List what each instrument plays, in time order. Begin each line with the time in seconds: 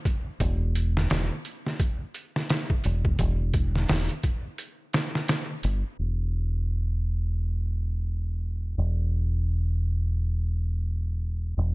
0.05 kick, closed hi-hat
0.40 fingered electric bass E1, kick, closed hi-hat
0.75 closed hi-hat
0.97 snare
1.10 fingered electric bass E1, snare, closed hi-hat
1.45 closed hi-hat
1.67 snare
1.80 kick, closed hi-hat
2.14 closed hi-hat
2.36 snare
2.50 snare, closed hi-hat
2.70 kick
2.84 fingered electric bass E1, closed hi-hat
3.05 kick
3.19 fingered electric bass E1, kick, closed hi-hat
3.54 kick, closed hi-hat
3.76 snare
3.89 fingered electric bass E1, snare, open hi-hat
4.09 closed hi-hat
4.23 kick, closed hi-hat
4.58 closed hi-hat
4.93 snare, closed hi-hat
5.15 snare
5.28 snare, closed hi-hat
5.63 fingered electric bass G1, closed hi-hat
5.99 fingered electric bass E1
8.78 fingered electric bass E1
11.58 fingered electric bass E1